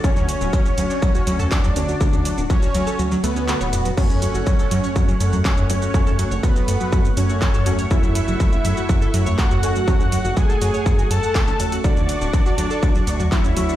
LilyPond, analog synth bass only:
\new Staff \with { instrumentName = "Analog synth bass" } { \clef bass \time 4/4 \key fis \minor \tempo 4 = 122 d,8. d,,16 r8 d,16 r16 d,16 r16 d,8. d,8. | d,8. d,,16 r8 d,16 r16 d,16 r16 d,8. d,,8. | fis,8. fis,,16 r8 fis,16 r16 fis,16 r16 fis,8. fis,8. | fis,8. fis,,16 r8 fis,16 r16 fis,16 r16 fis,8. fis,8. |
fis,8. fis,,16 r8 fis,16 r16 fis,16 r16 fis,8. fis,8. | fis,8. fis,,16 r8 fis,16 r16 fis,16 r16 fis,16 r8 fis,,16 r8 | d,8. d,,16 r8 d,16 r16 d,16 r16 d,8. d,8. | }